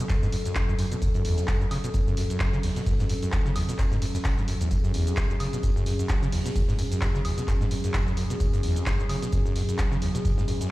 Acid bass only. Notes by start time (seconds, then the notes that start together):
0.10 F#2
0.23 G#2
0.33 F#2
0.46 F#2
0.56 F#2
0.69 F#2
0.79 F#2
0.92 B2
1.02 F#2
1.15 F#2
1.25 E2
1.38 F#2
1.61 F#2
1.71 C#3
1.84 B2
1.94 F#2
2.07 F#2
2.17 F#2
2.30 F#2
2.53 C#3
2.63 E2
2.76 B2
2.87 F#2
3.00 G#2
3.10 F#2
3.23 F#2
3.33 F#2
3.46 C#3
3.56 E2
3.69 B2
3.79 F#2
3.92 G#2
4.02 F#2
4.15 F#2
4.25 C#3
4.38 G#2
4.48 F#2
4.61 E2
4.71 F#2
4.84 F#2
4.94 E2
5.07 F#2
5.17 F#2
5.30 F#2
5.40 C#3
5.53 B2
5.63 F#2
5.76 F#2
5.86 F#2
5.99 F#2
6.09 F#2
6.22 C#3
6.33 E2
6.46 B2
6.56 F#2
6.69 G#2
6.79 F#2
6.92 F#2
7.02 F#2
7.15 C#3
7.25 E2
7.38 B2
7.48 F#2
7.61 G#2
7.71 F#2
7.84 F#2
7.94 F#2
8.07 F#2
8.17 F#2
8.30 B2
8.40 F#2
8.53 F#2
8.63 E2
8.76 F#2
8.86 F#2
8.99 F#2
9.09 C#3
9.22 B2
9.33 F#2
9.46 F#2
9.56 F#2
9.69 F#2
9.79 F#2
9.92 C#3
10.02 E2
10.15 B2
10.25 F#2
10.38 G#2
10.48 F#2
10.61 F#2